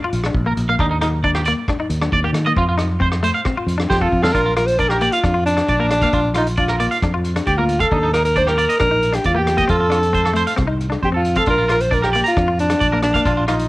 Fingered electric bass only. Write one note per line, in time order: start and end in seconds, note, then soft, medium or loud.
0.13 0.31 A#1 medium
0.34 0.53 A#1 medium
0.57 0.75 A#1 medium
0.79 1.53 D#2 medium
1.90 2.08 D#2 medium
2.13 2.31 D#2 medium
2.33 2.52 D#3 medium
2.56 3.30 F2 medium
3.67 3.85 F2 medium
3.91 4.09 F2 loud
4.12 4.31 F2 medium
4.34 5.08 A#1 medium
5.24 5.61 F2 medium
5.69 6.06 A#1 medium
6.13 6.87 A#1 medium
7.02 7.39 F2 medium
7.47 7.84 D2 medium
7.92 8.65 D#2 medium
8.80 9.17 A#1 medium
9.24 9.61 E2 medium
9.69 10.43 F2 medium
10.58 10.95 C2 medium
11.02 11.39 F2 medium
11.47 12.21 A#1 medium
12.37 12.74 F2 medium
12.81 13.18 A#1 medium
13.26 13.69 A#1 medium